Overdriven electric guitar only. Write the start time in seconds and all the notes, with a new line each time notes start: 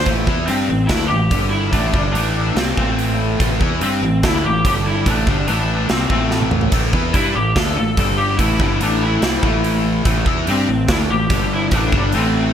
0.06 A2 E3 A3
0.27 E3 B3 E4
0.48 G3 D4 G4
0.68 A2 E3
0.89 D3 A3 D4
1.10 A2 E3
1.30 G2 D3 G3
1.72 A2 E3 A3
1.93 G2 D3 G3
2.14 A2 E3 A3
2.56 C3 G3 C4
2.77 A2 E3 A3
3.40 A2 E3 A3
3.61 E3 B3 E4
3.82 G3 D4 G4
4.04 A2 E3
4.23 D3 A3 D4
4.45 A2 E3
4.65 G2 D3 G3
5.07 A2 E3 A3
5.27 G2 D3 G3
5.48 A2 E3 A3
5.89 C3 G3 C4
6.10 A2 E3 A3
6.72 A2 E3 A3
6.94 E3 B3 E4
7.14 G3 D4 G4
7.34 A2 E3
7.56 D3 A3 D4
7.77 A2 E3
7.97 G2 D3 G3
8.39 A2 E3 A3
8.60 G2 D3 G3
8.81 A2 E3 A3
9.22 C3 G3 C4
9.42 A2 E3 A3
10.04 A2 E3 A3
10.26 E3 B3 E4
10.46 G3 D4 G4
10.67 A2 E3
10.88 D3 A3 D4
11.10 A2 E3
11.30 G2 D3 G3
11.71 A2 E3 A3
11.93 G2 D3 G3
12.13 A2 E3 A3